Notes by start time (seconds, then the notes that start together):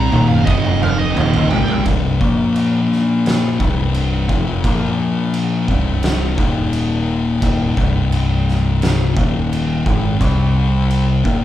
Already playing: C3 G3 C4 A#5
0.11 D#1 D#2 A#2 D#3, high tom
0.28 F5, mid tom
0.45 F1 F2 C3 F3 D#5, kick
0.65 mid tom
0.82 F5, mid tom
0.98 D#5
1.14 D#1 D#2 A#2 D#3, mid tom
1.34 floor tom
1.49 G#1 G#2 D#3 G#3 G5, floor tom
1.68 floor tom
1.84 C1 C2 G2 C3, kick, crash
2.20 A#1 A#2 F3 A#3, kick
2.56 crash
2.92 snare
3.26 snare, crash
3.60 C1 C2 G2 C3, kick
3.94 crash
4.29 F1 F2 C3 F3, kick
4.64 A#1 A#2 F3 A#3, kick, crash
5.34 crash
5.68 C1 C2 G2 C3, kick
6.03 snare, crash
6.38 D#1 D#2 A#2 D#3, kick
6.73 crash
7.41 D#1 D#2 A#2 D#3, kick, crash
7.76 C1 C2 G2 C3, kick
8.12 crash
8.49 snare
8.82 snare, crash
9.15 D#1 D#2 A#2 D#3, kick
9.53 crash
9.85 G#1 G#2 D#3 G#3, kick
10.19 C2 C3 G3 C4, kick, crash
10.90 crash
11.25 D#1 D#2 A#2 D#3, kick